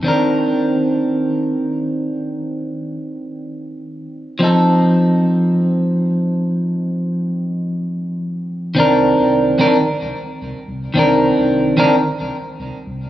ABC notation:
X:1
M:4/4
L:1/16
Q:"Swing 16ths" 1/4=110
K:Cdor
V:1 name="Clean electric guitar"
[E,CDB]16- | [E,CDB]16 | [F,CEA]16- | [F,CEA]16 |
[E,CDB]6 [E,CDB] z8 z | [E,CDB]6 [E,CDB] z8 z |]
V:2 name="Sub bass" clef=bass
z16 | z16 | z16 | z16 |
C,,2 z C,,2 z G,,,2 z C,, z2 C,, z C,, z | C,,2 z C,,2 z G,,,2 z C,, z2 C,, z C,, z |]